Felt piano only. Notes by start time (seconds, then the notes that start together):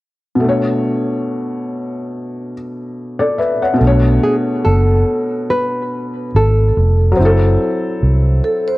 0.35 B2
0.40 A3
0.44 D4
0.49 C#5
3.19 A4 D5
3.38 B4 E5
3.62 C#5 F#5
3.74 B2
3.78 A3
3.83 D4
3.87 C#5
7.12 F#3
7.16 C4
7.20 E4
7.25 A4